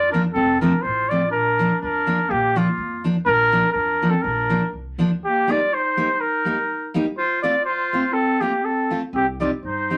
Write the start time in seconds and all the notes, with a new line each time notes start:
Already playing: F2 F4 D5
0.11 F3 A#3 D4 A#4
0.34 F1 C4 A4
0.60 F3 A3 C4 D4 A#4
0.82 A1 F4 C5
1.08 F3 A3 C4 F4 D5
1.30 A#1 D4 A#4
1.59 F3 A#3 D4
1.81 F2 D4 A#4
2.06 F3 A#3 D4
2.29 A#1 A#3 G4
2.55 F3 A#3 D4 F4
2.78 F2
3.04 F3 A#3 D4
3.26 A#1 D4 A#4
3.52 F3 A#3 D4
3.72 F2 D4 A#4
4.02 F3 A#3 D4
4.10 C4 A4
4.22 A#1 D4 A#4
4.49 F3 A#3 D4
4.73 C2
4.98 D2 F3 A#3 D4
5.25 A#3 G4
5.47 G3 A#3 D#4 D5
5.52 F4
5.73 D#4 C5
5.97 G3 A#3 D#4
6.21 D#4 A#4
6.45 G3 A#3 D#4
6.94 G3 A#3 D#4
7.18 F4 C5
7.42 A3 C4 F4 D5
7.65 F4 C5
7.93 A3 C4 F4
8.13 C4 A4
8.41 A3 A#3 C4 F4 G4
8.62 C4 A4
8.90 A3 C4 F4
9.13 C2 C4 G4
9.40 G3 C4 D#4 F4 D5
9.63 G2 D#4 C5
9.90 G3 C4 D#4